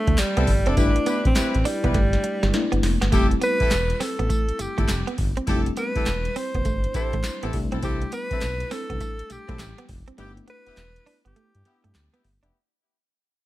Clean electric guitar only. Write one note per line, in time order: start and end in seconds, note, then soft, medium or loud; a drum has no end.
0.08 0.16 A3 medium
0.37 0.45 B3 medium
0.48 muted clean electric guitar stroke medium
0.67 0.75 C4 medium
0.77 0.92 G3 medium
0.96 muted clean electric guitar stroke soft
1.07 1.21 B3 medium
1.36 muted clean electric guitar stroke soft
1.65 1.80 D4 medium
1.84 1.92 B3 medium
1.95 2.09 A3 medium
2.24 muted clean electric guitar stroke soft
2.43 2.51 G3 medium
2.72 2.80 B3 medium
2.83 muted clean electric guitar stroke soft
3.01 3.10 B3 medium
3.12 3.27 A3 medium
3.31 muted clean electric guitar stroke soft
3.41 3.56 B3 medium
3.71 muted clean electric guitar stroke soft
4.00 4.15 C4 medium
4.19 4.28 B3 medium
4.30 4.44 A3 medium
4.59 muted clean electric guitar stroke soft
4.78 4.86 A3 medium
5.07 5.16 B3 medium
5.18 muted clean electric guitar stroke soft
5.37 5.45 C4 medium
5.48 5.62 A3 medium
5.67 muted clean electric guitar stroke soft
5.77 5.92 B3 medium
6.07 muted clean electric guitar stroke soft
6.36 6.51 C4 medium
6.55 6.63 B3 medium
6.66 6.80 A3 medium
6.95 muted clean electric guitar stroke soft
7.14 7.22 A3 medium
7.43 7.52 B3 medium
7.54 muted clean electric guitar stroke soft
7.72 7.81 C4 medium
7.83 7.98 C4 medium
8.02 muted clean electric guitar stroke soft
8.13 8.27 B3 medium
8.42 muted clean electric guitar stroke soft
8.71 8.86 C4 medium
8.90 8.98 B3 medium
9.01 9.16 A3 medium
9.30 muted clean electric guitar stroke soft
9.49 9.57 A3 medium
9.78 9.87 B3 medium
9.89 muted clean electric guitar stroke soft
10.08 10.16 C4 medium
10.18 10.33 G3 medium
10.37 muted clean electric guitar stroke soft
10.48 10.62 B3 medium
10.78 muted clean electric guitar stroke soft
11.06 11.21 D4 medium
11.25 11.34 B3 medium
11.36 11.51 A3 medium
11.66 muted clean electric guitar stroke soft
11.84 11.92 A3 medium
12.14 12.22 B3 medium
12.24 muted clean electric guitar stroke soft
12.43 12.51 D4 medium